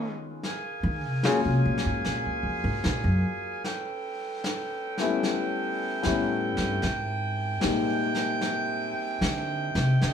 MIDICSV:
0, 0, Header, 1, 6, 480
1, 0, Start_track
1, 0, Tempo, 804290
1, 258, Time_signature, 4, 2, 24, 8
1, 2176, Tempo, 795756
1, 6089, End_track
2, 0, Start_track
2, 0, Title_t, "Saxophone section"
2, 0, Program_c, 0, 65
2, 0, Note_on_c, 0, 73, 47
2, 0, Note_on_c, 0, 75, 49
2, 0, Note_on_c, 0, 77, 60
2, 162, Note_off_c, 0, 73, 0
2, 162, Note_off_c, 0, 75, 0
2, 162, Note_off_c, 0, 77, 0
2, 263, Note_on_c, 0, 70, 46
2, 269, Note_on_c, 0, 68, 51
2, 270, Note_on_c, 0, 77, 55
2, 270, Note_on_c, 0, 80, 63
2, 2159, Note_off_c, 0, 70, 0
2, 2162, Note_off_c, 0, 68, 0
2, 2162, Note_off_c, 0, 80, 0
2, 2163, Note_off_c, 0, 77, 0
2, 2175, Note_on_c, 0, 79, 68
2, 2177, Note_on_c, 0, 71, 54
2, 2180, Note_on_c, 0, 61, 62
2, 2183, Note_on_c, 0, 69, 53
2, 4075, Note_off_c, 0, 71, 0
2, 4077, Note_off_c, 0, 61, 0
2, 4078, Note_off_c, 0, 69, 0
2, 4097, Note_on_c, 0, 48, 65
2, 4098, Note_on_c, 0, 70, 59
2, 4103, Note_on_c, 0, 80, 54
2, 5907, Note_off_c, 0, 70, 0
2, 5907, Note_off_c, 0, 80, 0
2, 6010, Note_on_c, 0, 69, 57
2, 6010, Note_on_c, 0, 75, 54
2, 6089, Note_off_c, 0, 48, 0
2, 6089, Note_off_c, 0, 69, 0
2, 6089, Note_off_c, 0, 75, 0
2, 6089, Note_off_c, 0, 79, 0
2, 6089, End_track
3, 0, Start_track
3, 0, Title_t, "Tenor saxophone"
3, 0, Program_c, 1, 66
3, 0, Note_on_c, 1, 61, 71
3, 82, Note_off_c, 1, 61, 0
3, 6089, End_track
4, 0, Start_track
4, 0, Title_t, "Grand piano"
4, 0, Program_c, 2, 0
4, 0, Control_c, 2, 64, 127
4, 0, Note_on_c, 2, 51, 41
4, 0, Note_on_c, 2, 56, 41
4, 0, Note_on_c, 2, 59, 41
4, 0, Note_on_c, 2, 61, 39
4, 0, Note_on_c, 2, 65, 42
4, 260, Note_off_c, 2, 51, 0
4, 260, Note_off_c, 2, 56, 0
4, 261, Note_off_c, 2, 59, 0
4, 262, Note_off_c, 2, 65, 0
4, 264, Note_off_c, 2, 61, 0
4, 266, Control_c, 2, 64, 0
4, 354, Control_c, 2, 64, 127
4, 740, Note_on_c, 2, 54, 39
4, 740, Note_on_c, 2, 58, 39
4, 741, Note_on_c, 2, 56, 38
4, 742, Note_on_c, 2, 65, 44
4, 749, Note_on_c, 2, 61, 39
4, 1028, Note_off_c, 2, 54, 0
4, 1028, Note_off_c, 2, 56, 0
4, 1028, Note_off_c, 2, 58, 0
4, 1029, Note_off_c, 2, 65, 0
4, 1033, Note_off_c, 2, 61, 0
4, 2182, Control_c, 2, 64, 0
4, 2269, Control_c, 2, 64, 127
4, 2987, Note_on_c, 2, 55, 46
4, 2989, Note_on_c, 2, 57, 41
4, 2996, Note_on_c, 2, 61, 41
4, 2999, Note_on_c, 2, 59, 43
4, 3000, Note_on_c, 2, 64, 50
4, 3588, Note_off_c, 2, 55, 0
4, 3589, Note_off_c, 2, 57, 0
4, 3592, Note_off_c, 2, 61, 0
4, 3594, Note_off_c, 2, 59, 0
4, 3594, Note_off_c, 2, 64, 0
4, 3610, Note_on_c, 2, 55, 45
4, 3611, Note_on_c, 2, 57, 44
4, 3614, Note_on_c, 2, 59, 43
4, 3616, Note_on_c, 2, 61, 42
4, 3625, Note_on_c, 2, 64, 50
4, 4091, Note_off_c, 2, 55, 0
4, 4092, Note_off_c, 2, 57, 0
4, 4093, Note_off_c, 2, 59, 0
4, 4094, Note_off_c, 2, 61, 0
4, 4099, Note_off_c, 2, 64, 0
4, 4102, Control_c, 2, 64, 0
4, 4221, Control_c, 2, 64, 127
4, 4563, Note_on_c, 2, 56, 38
4, 4564, Note_on_c, 2, 55, 39
4, 4567, Note_on_c, 2, 58, 35
4, 4570, Note_on_c, 2, 60, 39
4, 4577, Note_on_c, 2, 63, 42
4, 4856, Note_off_c, 2, 56, 0
4, 4857, Note_off_c, 2, 55, 0
4, 4859, Note_off_c, 2, 58, 0
4, 4860, Note_off_c, 2, 60, 0
4, 4863, Note_off_c, 2, 63, 0
4, 6021, Control_c, 2, 64, 0
4, 6089, End_track
5, 0, Start_track
5, 0, Title_t, "Upright bass"
5, 0, Program_c, 3, 32
5, 497, Note_on_c, 3, 51, 74
5, 621, Note_off_c, 3, 51, 0
5, 621, Note_on_c, 3, 48, 56
5, 745, Note_off_c, 3, 48, 0
5, 745, Note_on_c, 3, 49, 64
5, 863, Note_off_c, 3, 49, 0
5, 866, Note_on_c, 3, 48, 66
5, 984, Note_off_c, 3, 48, 0
5, 988, Note_on_c, 3, 46, 72
5, 1099, Note_off_c, 3, 46, 0
5, 1107, Note_on_c, 3, 44, 61
5, 1199, Note_off_c, 3, 44, 0
5, 1228, Note_on_c, 3, 46, 63
5, 1344, Note_off_c, 3, 46, 0
5, 1348, Note_on_c, 3, 37, 35
5, 1448, Note_off_c, 3, 37, 0
5, 1451, Note_on_c, 3, 41, 55
5, 1570, Note_off_c, 3, 41, 0
5, 1575, Note_on_c, 3, 44, 68
5, 1673, Note_off_c, 3, 44, 0
5, 1703, Note_on_c, 3, 46, 72
5, 1810, Note_off_c, 3, 46, 0
5, 1814, Note_on_c, 3, 42, 67
5, 1923, Note_off_c, 3, 42, 0
5, 3632, Note_on_c, 3, 45, 71
5, 3935, Note_off_c, 3, 45, 0
5, 3942, Note_on_c, 3, 43, 62
5, 4092, Note_off_c, 3, 43, 0
5, 4098, Note_on_c, 3, 44, 65
5, 4550, Note_off_c, 3, 44, 0
5, 4585, Note_on_c, 3, 46, 58
5, 5355, Note_off_c, 3, 46, 0
5, 5534, Note_on_c, 3, 50, 79
5, 5846, Note_off_c, 3, 50, 0
5, 5859, Note_on_c, 3, 48, 78
5, 6010, Note_off_c, 3, 48, 0
5, 6021, Note_on_c, 3, 50, 73
5, 6089, Note_off_c, 3, 50, 0
5, 6089, End_track
6, 0, Start_track
6, 0, Title_t, "Drums"
6, 259, Note_on_c, 9, 25, 44
6, 259, Note_on_c, 9, 38, 34
6, 319, Note_off_c, 9, 38, 0
6, 736, Note_on_c, 9, 38, 53
6, 796, Note_off_c, 9, 38, 0
6, 1060, Note_on_c, 9, 38, 32
6, 1120, Note_off_c, 9, 38, 0
6, 1220, Note_off_c, 9, 25, 0
6, 1220, Note_on_c, 9, 25, 38
6, 1220, Note_on_c, 9, 38, 33
6, 1280, Note_off_c, 9, 38, 0
6, 1694, Note_on_c, 9, 38, 55
6, 1754, Note_off_c, 9, 38, 0
6, 2175, Note_off_c, 9, 25, 0
6, 2175, Note_on_c, 9, 25, 42
6, 2175, Note_on_c, 9, 38, 40
6, 2235, Note_off_c, 9, 38, 0
6, 2655, Note_on_c, 9, 38, 58
6, 2715, Note_off_c, 9, 38, 0
6, 2978, Note_on_c, 9, 38, 36
6, 3038, Note_off_c, 9, 38, 0
6, 3132, Note_off_c, 9, 25, 0
6, 3132, Note_on_c, 9, 25, 37
6, 3132, Note_on_c, 9, 38, 37
6, 3193, Note_off_c, 9, 38, 0
6, 3616, Note_on_c, 9, 38, 56
6, 3676, Note_off_c, 9, 38, 0
6, 3939, Note_on_c, 9, 38, 38
6, 3999, Note_off_c, 9, 38, 0
6, 4090, Note_off_c, 9, 25, 0
6, 4090, Note_on_c, 9, 25, 48
6, 4090, Note_on_c, 9, 38, 38
6, 4150, Note_off_c, 9, 38, 0
6, 4567, Note_on_c, 9, 38, 60
6, 4628, Note_off_c, 9, 38, 0
6, 4890, Note_on_c, 9, 38, 33
6, 4950, Note_off_c, 9, 38, 0
6, 5050, Note_off_c, 9, 25, 0
6, 5050, Note_on_c, 9, 25, 39
6, 5050, Note_on_c, 9, 38, 39
6, 5111, Note_off_c, 9, 38, 0
6, 5536, Note_on_c, 9, 38, 59
6, 5596, Note_off_c, 9, 38, 0
6, 5859, Note_on_c, 9, 38, 37
6, 5919, Note_off_c, 9, 38, 0
6, 6017, Note_off_c, 9, 25, 0
6, 6017, Note_on_c, 9, 25, 47
6, 6017, Note_on_c, 9, 38, 39
6, 6077, Note_off_c, 9, 38, 0
6, 6089, Note_off_c, 9, 25, 0
6, 6089, End_track
0, 0, End_of_file